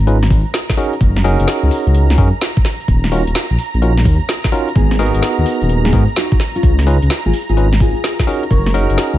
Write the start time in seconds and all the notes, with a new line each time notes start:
Already playing: A#5
0.00 G#1
0.07 C#4 D#4 F4 G#4 B4, closed hi-hat
0.23 snare
0.30 G#1, kick, open hi-hat
0.54 snare, closed hi-hat
0.70 kick, snare
0.77 C#4 D#4 F#4 G#4 A#4, open hi-hat
0.93 closed hi-hat
1.01 F#1, kick, closed hi-hat
1.16 snare
1.24 C#4 D#4 F#4 G#4 A#4, open hi-hat
1.40 F#1, closed hi-hat
1.48 snare, closed hi-hat
1.63 C#2
1.71 open hi-hat
1.86 C#2, closed hi-hat
1.95 closed hi-hat
2.10 snare
2.18 F#2 C#4 D#4 F#4 G#4 A#4, kick, open hi-hat
2.41 snare, closed hi-hat
2.57 kick
2.65 snare, open hi-hat
2.81 closed hi-hat
2.88 D#1, kick, closed hi-hat
3.04 snare
3.12 C#4 D#4 F4 F#4 A#4, open hi-hat
3.27 D#1, closed hi-hat
3.35 snare, closed hi-hat
3.51 A#1
3.59 open hi-hat
3.74 A#1, closed hi-hat
3.82 C#4 D#4 F4 F#4 A#4, closed hi-hat
3.98 snare
4.05 D#2, kick, open hi-hat
4.29 snare, closed hi-hat
4.44 kick, snare
4.52 C#4 D#4 F4 F#4 A#4, open hi-hat
4.68 closed hi-hat
4.76 G#1 B3 G#4, kick, closed hi-hat, shaker
4.91 snare
4.99 B3 D#4 F#4 G#4 A#4, open hi-hat, shaker
5.14 G#1, closed hi-hat, shaker
5.22 snare, closed hi-hat, shaker
5.38 D#2
5.46 open hi-hat, shaker
5.62 D#1, closed hi-hat, shaker
5.69 closed hi-hat, shaker
5.85 B3 G#4, snare
5.93 G#2 B3 D#4 F#4 G#4 A#4, kick, open hi-hat, shaker
6.09 shaker
6.16 D#4 F#4, snare, closed hi-hat, shaker
6.32 kick
6.40 snare, open hi-hat, shaker
6.55 C#4 F4, closed hi-hat, shaker
6.63 C#2, kick, closed hi-hat, shaker
6.79 snare
6.87 C#4 D#4 F4 G#4 B4, open hi-hat, shaker
7.02 C#2, closed hi-hat, shaker
7.10 snare, closed hi-hat, shaker
7.26 G#1 F4 G#4
7.33 open hi-hat, shaker
7.49 G#1 F4 G#4, closed hi-hat, shaker
7.57 C#4 D#4 F4 G#4 B4, closed hi-hat, shaker
7.73 snare
7.80 G#1 F4 G#4, kick, open hi-hat, shaker
7.95 shaker
8.04 snare, closed hi-hat, shaker
8.19 kick, snare
8.27 C#4 D#4 F#4 G#4 A#4, open hi-hat, shaker
8.43 closed hi-hat, shaker
8.51 F#1 A#4 C#5, kick, closed hi-hat, shaker
8.66 snare
8.74 C#4 D#4 F#4 G#4 A#4, open hi-hat, shaker
8.89 F#1, closed hi-hat, shaker
8.98 snare, closed hi-hat, shaker
9.13 C#2